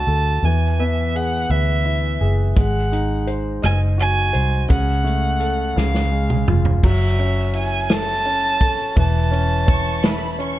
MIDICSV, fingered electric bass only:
0, 0, Header, 1, 2, 480
1, 0, Start_track
1, 0, Key_signature, 3, "minor"
1, 0, Tempo, 711744
1, 289, Time_signature, 6, 3, 24, 8
1, 7143, End_track
2, 0, Start_track
2, 0, Title_t, "Fingered electric bass"
2, 0, Program_c, 0, 33
2, 47, Note_on_c, 0, 38, 65
2, 274, Note_off_c, 0, 38, 0
2, 287, Note_on_c, 0, 40, 78
2, 982, Note_off_c, 0, 40, 0
2, 1010, Note_on_c, 0, 38, 81
2, 1463, Note_off_c, 0, 38, 0
2, 1489, Note_on_c, 0, 30, 70
2, 1715, Note_off_c, 0, 30, 0
2, 1732, Note_on_c, 0, 32, 93
2, 2424, Note_off_c, 0, 32, 0
2, 2454, Note_on_c, 0, 30, 92
2, 2905, Note_off_c, 0, 30, 0
2, 2932, Note_on_c, 0, 36, 68
2, 3157, Note_off_c, 0, 36, 0
2, 3172, Note_on_c, 0, 37, 93
2, 3864, Note_off_c, 0, 37, 0
2, 3892, Note_on_c, 0, 37, 88
2, 4344, Note_off_c, 0, 37, 0
2, 4369, Note_on_c, 0, 29, 77
2, 4595, Note_off_c, 0, 29, 0
2, 4611, Note_on_c, 0, 30, 92
2, 6022, Note_off_c, 0, 30, 0
2, 6049, Note_on_c, 0, 28, 94
2, 7143, Note_off_c, 0, 28, 0
2, 7143, End_track
0, 0, End_of_file